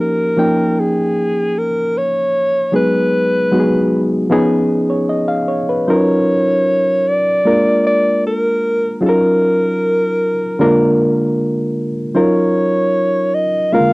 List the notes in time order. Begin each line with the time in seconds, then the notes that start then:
Already playing: F3 A#3 C#4 D#4 G4
0.01 A#4
0.37 F3 A#3 C#4 D#4 G5
0.80 G#4
1.58 A#4
1.98 C#5
2.72 F#3 G#3 B3 D#4 G#4 B4
3.51 F#3 G#3 B3 D#4 F#4
3.60 G#4
4.30 F3 B3 C#4 D#4 G#4
4.90 C#5
5.09 D#5
5.28 F5
5.48 C#5
5.69 B4
5.88 F#3 C#4 D#4 F4 A#4 C#5
7.08 D5
7.45 G#3 A#3 D4 F4 A#4
7.87 D5
8.27 A#4
9.01 F#3 C#4 D#4 F4 G#4
9.06 A#4
10.59 D3 G#3 A#3 D4 F4 A#4
12.15 F#3 C#4 D#4 F4 A#4 C#5
13.35 D#5
13.72 G#3 A#3 C#4 F4 A#4 F5
13.80 D3